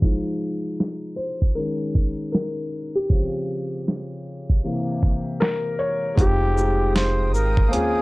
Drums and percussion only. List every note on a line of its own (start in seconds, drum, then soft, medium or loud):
0.02 kick loud
0.02 closed hi-hat medium
0.80 snare loud
0.80 closed hi-hat soft
1.42 kick medium
1.58 closed hi-hat medium
1.95 kick medium
1.95 closed hi-hat soft
2.33 snare loud
2.33 closed hi-hat medium
3.10 kick loud
3.10 closed hi-hat medium
3.50 closed hi-hat soft
3.88 snare medium
3.88 closed hi-hat soft
4.50 kick medium
4.65 closed hi-hat medium
5.03 kick medium
5.03 closed hi-hat soft
5.41 snare loud
5.41 closed hi-hat medium
6.18 kick loud
6.18 closed hi-hat medium
6.58 shaker soft
6.96 snare medium
6.96 closed hi-hat medium
7.35 shaker soft
7.57 kick medium
7.73 closed hi-hat medium